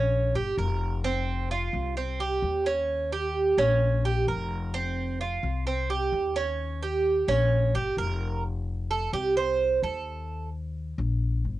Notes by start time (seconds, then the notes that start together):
Already playing: A#1 C#4
0.34 G1 G4
0.58 F1 A#4
1.04 C4
1.51 F4
1.73 C2
1.97 C4
2.20 G4
2.42 D#2
2.66 C#4
3.12 G4
3.58 A#1 C#4
4.05 G4
4.27 F1 A#4
4.74 C4
5.21 F4
5.43 C2
5.67 C4
5.90 G4
6.12 D#2
6.36 C#4
6.83 G4
7.28 A#1 C#4
7.74 G1 G4
7.97 F1 A#4
8.91 A4
9.13 C2 G4
9.37 C5
9.82 D#2 A4
10.98 A#1
11.45 G1